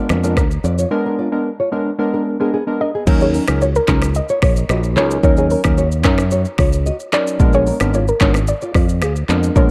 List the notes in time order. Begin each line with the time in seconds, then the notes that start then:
Already playing: G#3 B3 D4 A#4
0.09 F2, finger snap, cross-stick, low bongo, shaker
0.24 G#3 B3 D4 F4 A#4 D5, shaker
0.37 D2 D4 A#4, finger snap, kick, cross-stick, high bongo, shaker
0.51 shaker
0.64 F2 F4 D5, shaker
0.78 F4 C#5, shaker
0.91 G#3 B3 D4 A#4
1.06 D4 A#4
1.19 F4 D5
1.32 G#3 B3 D4 A#4
1.60 F4 C#5
1.72 G#3 B3 D4 A#4
1.99 G#3 B3 D4 A#4
2.14 D4 A#4
2.40 G#3 B3 D4 G#4 A#4
2.54 B3 G#4
2.67 G#3 B3 D4 A#4
2.81 D4 A#4 D#5
2.95 B3 G#4
3.07 D#2 F#3 C#4 D#4 A#4, kick, crash, shaker
3.21 B3 G#4 C#5, shaker
3.34 C#4 A#4, open hi-hat, shaker
3.48 C#2 F#3 C#4 D#4 A#4, finger snap, cross-stick, shaker
3.61 F#4 C#5, shaker
3.75 A#4, shaker
3.88 C#2 F#3 C#4 D#4 A#4, finger snap, kick, cross-stick, clap, shaker
4.02 finger snap, cross-stick, shaker
4.15 D#5, shaker
4.29 F4 C#5, shaker
4.42 A#1 F4 C#5, finger snap, kick, cross-stick, open hi-hat, shaker
4.56 shaker
4.69 A#1 F#4 D#5, finger snap, cross-stick, shaker
4.83 shaker
4.96 C#2 F#3 C#4 D#4 F4 A#4 C#5, clap, shaker
5.11 shaker
5.23 D#2 F#3 C#4 D#4 A#4 C#5, kick, shaker
5.37 B3 G#4 C#5, shaker
5.50 C#4 A#4, open hi-hat, shaker
5.64 D#2 F#3 C#4 D#4 A#4, finger snap, kick, cross-stick, shaker
5.78 F#4 C#5, shaker
5.92 shaker
6.04 F#2 F#3 C#4 D#4 A#4, finger snap, kick, cross-stick, clap, shaker
6.18 finger snap, cross-stick, shaker
6.31 F#4 C#5, shaker
6.45 shaker
6.58 C#2 F4 C#5, finger snap, kick, cross-stick, open hi-hat, shaker
6.73 shaker
6.86 F#4 D#5, shaker
7.00 shaker
7.12 F#3 C#4 D#4 A#4 D5, finger snap, cross-stick, clap, shaker
7.27 shaker
7.39 A#1 G#3 B3 D4 A#4, kick, shaker
7.53 B3 G#4 C#5, shaker
7.67 D4 A#4, open hi-hat, shaker
7.80 G#1 G#3 B3 D4 A#4, finger snap, cross-stick, shaker
7.94 F4 C#5 D5, shaker
8.08 A#4, shaker
8.20 G#1 G#3 B3 D4 F4 A#4 C#5, finger snap, kick, cross-stick, clap, shaker
8.34 finger snap, cross-stick, shaker
8.47 D5, shaker
8.61 F4 D5, shaker
8.74 F2 F4 D5, finger snap, kick, cross-stick, open hi-hat, shaker
8.89 shaker
9.02 D2 G#4 F5, finger snap, cross-stick, shaker
9.16 shaker
9.28 F2 G#3 B3 D4 F4 A#4 D5, clap, shaker
9.43 shaker
9.56 A#1 G#3 B3 D4 A#4 C#5, kick, shaker